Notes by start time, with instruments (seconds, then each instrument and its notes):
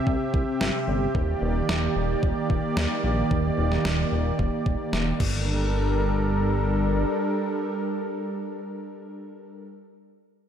Already playing: analog synth pad C3 C4 G4 E5
0.07 analog synth bass C2, kick
0.34 analog synth bass C2, kick
0.61 analog synth bass G1, snare
0.88 analog synth bass G1
1.15 analog synth bass D#1, analog synth pad D#3 A#3 D5, kick
1.42 analog synth bass D#1
1.69 analog synth bass D#1, snare
1.96 analog synth bass D#1
2.23 analog synth bass D#1, kick
2.50 analog synth bass D#1, kick
2.77 analog synth bass D#2, snare
3.04 analog synth bass A#1
3.31 analog synth bass D#1, kick
3.58 analog synth bass D#1
3.72 snare
3.85 analog synth bass D#1, snare
4.12 analog synth bass D#1
4.39 analog synth bass D#1, kick
4.66 analog synth bass D#1, kick
4.93 analog synth bass D#1, snare
5.20 analog synth bass G1, analog synth pad G3 D4 A4 A#4, kick, crash